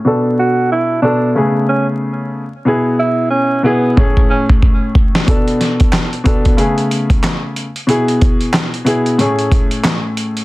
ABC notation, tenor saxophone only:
X:1
M:4/4
L:1/16
Q:"Swing 16ths" 1/4=92
K:A
V:1 name="Tenor saxophone"
z2 F2 E2 D2 z2 C z4 z | z2 E2 C2 B,2 z2 C z4 z | z16 | z16 |]